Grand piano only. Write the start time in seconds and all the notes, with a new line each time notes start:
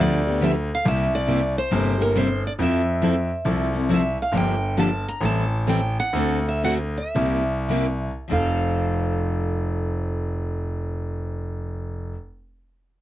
0.00 D2
0.85 C2
1.72 G1
2.59 F2
3.45 C2
4.32 G1
5.21 A1
6.13 D2
7.16 C2
8.31 F1